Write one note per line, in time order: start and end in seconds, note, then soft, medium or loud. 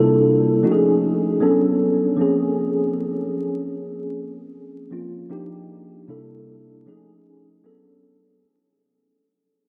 0.00 0.62 C3 medium
0.00 0.62 G3 medium
0.00 0.63 A#3 medium
0.00 0.63 D4 medium
0.00 0.63 E4 medium
0.00 0.67 A4 medium
0.63 1.41 F3 medium
0.63 1.41 A3 medium
0.63 1.40 C#4 medium
0.63 1.41 D#4 medium
0.63 0.71 F#4 medium
0.72 1.45 G#4 medium
1.40 2.18 F#3 medium
1.40 2.18 B3 medium
1.40 2.19 C#4 medium
1.40 2.19 D4 medium
1.40 2.19 A4 medium
2.16 4.86 F3 medium
2.16 4.87 A#3 medium
2.16 4.87 C4 medium
2.20 4.88 C#4 medium
2.20 4.89 G#4 medium
4.91 5.28 F3 soft
4.91 5.29 A#3 soft
4.91 5.30 C4 soft
4.91 5.31 C#4 soft
4.91 5.31 F4 medium
5.29 6.08 F3 medium
5.29 6.07 A#3 medium
5.29 6.08 D4 medium
5.29 6.08 D#4 medium
5.29 6.09 G4 medium
6.08 6.86 C3 medium
6.08 6.86 G3 medium
6.08 6.86 A#3 medium
6.08 6.86 D4 medium
6.08 6.87 E4 medium
6.08 6.87 A4 medium
6.86 7.64 F3 medium
6.86 7.64 A3 medium
6.86 7.63 C#4 medium
6.86 7.65 D#4 medium
6.86 7.65 G#4 medium
7.64 8.42 F#3 medium
7.64 8.42 B3 medium
7.64 8.42 C#4 medium
7.64 8.42 D4 medium
7.64 8.43 A4 medium